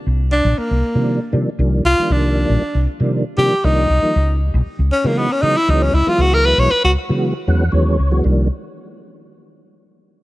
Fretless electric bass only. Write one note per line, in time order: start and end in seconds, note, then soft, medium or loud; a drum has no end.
0.06 0.40 C2 medium
0.44 0.55 A#1 medium
0.71 0.81 C2 medium
0.95 1.17 C3 medium
1.33 1.45 C3 medium
1.59 1.81 C2 medium
1.84 1.96 C2 medium
2.10 2.43 C2 medium
2.49 2.60 A#1 loud
2.75 2.85 C2 medium
3.00 3.22 C3 medium
3.37 3.49 C3 medium
3.64 3.86 C2 loud
3.89 4.01 C2 medium
4.02 muted fretless electric bass stroke soft
4.16 4.49 C#2 medium
4.54 4.64 B1 loud
4.79 4.89 C#2 medium
5.04 5.26 C#3 medium
5.43 5.54 C#3 medium
5.68 5.90 C#2 loud
5.93 6.05 C#2 medium
6.06 muted fretless electric bass stroke soft
6.18 6.52 C#2 medium
6.58 6.68 B1 medium
6.84 6.94 C#2 medium
7.10 7.31 C#3 medium
7.47 7.70 E2 medium
7.73 7.96 D#2 medium
7.99 8.22 C#2 medium
8.25 8.48 C2 medium